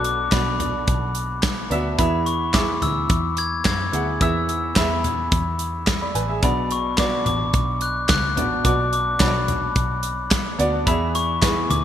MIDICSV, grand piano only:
0, 0, Header, 1, 2, 480
1, 0, Start_track
1, 0, Tempo, 555042
1, 1718, Time_signature, 4, 2, 24, 8
1, 10244, End_track
2, 0, Start_track
2, 0, Title_t, "Grand piano"
2, 0, Program_c, 0, 0
2, 0, Control_c, 0, 64, 127
2, 0, Note_on_c, 0, 47, 62
2, 0, Note_on_c, 0, 59, 63
2, 0, Note_on_c, 0, 62, 60
2, 0, Note_on_c, 0, 66, 65
2, 0, Note_on_c, 0, 69, 74
2, 0, Note_on_c, 0, 74, 61
2, 204, Note_off_c, 0, 59, 0
2, 206, Note_off_c, 0, 62, 0
2, 210, Note_off_c, 0, 66, 0
2, 211, Note_off_c, 0, 69, 0
2, 271, Note_on_c, 0, 59, 64
2, 276, Note_on_c, 0, 62, 59
2, 280, Note_on_c, 0, 66, 58
2, 285, Note_off_c, 0, 74, 0
2, 285, Note_on_c, 0, 74, 72
2, 484, Note_off_c, 0, 47, 0
2, 1093, Note_off_c, 0, 59, 0
2, 1095, Note_off_c, 0, 62, 0
2, 1097, Note_off_c, 0, 66, 0
2, 1100, Note_off_c, 0, 74, 0
2, 1471, Note_on_c, 0, 59, 70
2, 1476, Note_on_c, 0, 62, 66
2, 1480, Note_on_c, 0, 66, 68
2, 1487, Note_on_c, 0, 76, 81
2, 1679, Note_off_c, 0, 59, 0
2, 1682, Note_off_c, 0, 62, 0
2, 1684, Note_off_c, 0, 66, 0
2, 1687, Note_off_c, 0, 76, 0
2, 1712, Note_on_c, 0, 59, 60
2, 1715, Note_on_c, 0, 64, 58
2, 1719, Note_on_c, 0, 52, 64
2, 1722, Note_on_c, 0, 68, 60
2, 1728, Note_on_c, 0, 76, 81
2, 1730, Control_c, 0, 64, 0
2, 1896, Control_c, 0, 64, 127
2, 2125, Note_off_c, 0, 59, 0
2, 2126, Note_off_c, 0, 64, 0
2, 2129, Note_off_c, 0, 68, 0
2, 2133, Note_off_c, 0, 76, 0
2, 2193, Note_on_c, 0, 59, 65
2, 2197, Note_on_c, 0, 64, 60
2, 2201, Note_on_c, 0, 68, 63
2, 2206, Note_on_c, 0, 76, 71
2, 2404, Note_off_c, 0, 52, 0
2, 3014, Note_off_c, 0, 59, 0
2, 3016, Note_off_c, 0, 64, 0
2, 3018, Note_off_c, 0, 68, 0
2, 3021, Note_off_c, 0, 76, 0
2, 3392, Note_on_c, 0, 59, 53
2, 3397, Note_on_c, 0, 64, 54
2, 3402, Note_on_c, 0, 68, 52
2, 3406, Note_on_c, 0, 78, 71
2, 3600, Note_off_c, 0, 59, 0
2, 3602, Note_off_c, 0, 64, 0
2, 3605, Note_off_c, 0, 68, 0
2, 3607, Note_off_c, 0, 78, 0
2, 3638, Note_on_c, 0, 59, 63
2, 3641, Note_on_c, 0, 64, 60
2, 3644, Note_on_c, 0, 52, 59
2, 3648, Note_on_c, 0, 68, 56
2, 3653, Note_on_c, 0, 76, 73
2, 4047, Note_off_c, 0, 59, 0
2, 4049, Note_off_c, 0, 64, 0
2, 4052, Note_off_c, 0, 68, 0
2, 4055, Note_off_c, 0, 76, 0
2, 4115, Note_on_c, 0, 59, 59
2, 4119, Note_on_c, 0, 64, 59
2, 4125, Note_on_c, 0, 68, 56
2, 4128, Note_on_c, 0, 76, 73
2, 4327, Note_off_c, 0, 52, 0
2, 4935, Note_off_c, 0, 59, 0
2, 4937, Note_off_c, 0, 64, 0
2, 4940, Note_off_c, 0, 68, 0
2, 4942, Note_off_c, 0, 76, 0
2, 5201, Note_on_c, 0, 83, 55
2, 5207, Note_on_c, 0, 74, 46
2, 5314, Note_off_c, 0, 83, 0
2, 5317, Note_off_c, 0, 74, 0
2, 5318, Note_on_c, 0, 80, 63
2, 5323, Note_on_c, 0, 71, 53
2, 5433, Note_off_c, 0, 80, 0
2, 5435, Note_off_c, 0, 71, 0
2, 5443, Note_on_c, 0, 76, 53
2, 5447, Note_on_c, 0, 68, 45
2, 5556, Note_on_c, 0, 59, 64
2, 5560, Note_on_c, 0, 62, 62
2, 5561, Note_on_c, 0, 47, 60
2, 5565, Note_on_c, 0, 66, 60
2, 5568, Control_c, 0, 64, 0
2, 5570, Note_on_c, 0, 74, 79
2, 5669, Note_off_c, 0, 76, 0
2, 5671, Note_off_c, 0, 68, 0
2, 5725, Control_c, 0, 64, 127
2, 5967, Note_off_c, 0, 59, 0
2, 5968, Note_off_c, 0, 62, 0
2, 5971, Note_off_c, 0, 66, 0
2, 5974, Note_off_c, 0, 74, 0
2, 6034, Note_on_c, 0, 59, 64
2, 6039, Note_on_c, 0, 62, 58
2, 6043, Note_on_c, 0, 66, 55
2, 6050, Note_on_c, 0, 74, 79
2, 6245, Note_off_c, 0, 47, 0
2, 6855, Note_off_c, 0, 59, 0
2, 6857, Note_off_c, 0, 62, 0
2, 6859, Note_off_c, 0, 66, 0
2, 6862, Note_off_c, 0, 74, 0
2, 7236, Note_on_c, 0, 59, 62
2, 7241, Note_on_c, 0, 62, 53
2, 7244, Note_on_c, 0, 66, 53
2, 7250, Note_on_c, 0, 74, 61
2, 7442, Note_off_c, 0, 59, 0
2, 7444, Note_off_c, 0, 62, 0
2, 7446, Note_off_c, 0, 66, 0
2, 7449, Note_off_c, 0, 74, 0
2, 7476, Note_on_c, 0, 59, 67
2, 7481, Note_on_c, 0, 62, 58
2, 7484, Note_on_c, 0, 47, 54
2, 7486, Note_on_c, 0, 66, 60
2, 7491, Note_on_c, 0, 74, 70
2, 7887, Note_off_c, 0, 59, 0
2, 7889, Note_off_c, 0, 62, 0
2, 7892, Note_off_c, 0, 66, 0
2, 7894, Note_off_c, 0, 74, 0
2, 7952, Note_on_c, 0, 59, 61
2, 7956, Note_on_c, 0, 62, 60
2, 7962, Note_on_c, 0, 66, 57
2, 7968, Note_on_c, 0, 73, 56
2, 8019, Note_off_c, 0, 73, 0
2, 8024, Note_on_c, 0, 74, 77
2, 8167, Note_off_c, 0, 47, 0
2, 8773, Note_off_c, 0, 59, 0
2, 8776, Note_off_c, 0, 62, 0
2, 8778, Note_off_c, 0, 66, 0
2, 8809, Note_off_c, 0, 74, 0
2, 9153, Note_on_c, 0, 59, 79
2, 9158, Note_on_c, 0, 62, 72
2, 9164, Note_on_c, 0, 66, 65
2, 9170, Note_on_c, 0, 74, 83
2, 9360, Note_off_c, 0, 59, 0
2, 9363, Note_off_c, 0, 62, 0
2, 9366, Note_off_c, 0, 66, 0
2, 9369, Note_off_c, 0, 74, 0
2, 9393, Note_on_c, 0, 59, 69
2, 9397, Note_on_c, 0, 64, 64
2, 9400, Note_on_c, 0, 52, 65
2, 9403, Note_on_c, 0, 68, 70
2, 9407, Note_on_c, 0, 76, 77
2, 9409, Control_c, 0, 64, 0
2, 9537, Control_c, 0, 64, 127
2, 9805, Note_off_c, 0, 59, 0
2, 9807, Note_off_c, 0, 64, 0
2, 9810, Note_off_c, 0, 68, 0
2, 9812, Note_off_c, 0, 76, 0
2, 9873, Note_on_c, 0, 59, 69
2, 9876, Note_on_c, 0, 64, 67
2, 9881, Note_on_c, 0, 68, 63
2, 9887, Note_on_c, 0, 71, 76
2, 10085, Note_off_c, 0, 52, 0
2, 10244, Note_off_c, 0, 59, 0
2, 10244, Note_off_c, 0, 64, 0
2, 10244, Note_off_c, 0, 68, 0
2, 10244, Note_off_c, 0, 71, 0
2, 10244, End_track
0, 0, End_of_file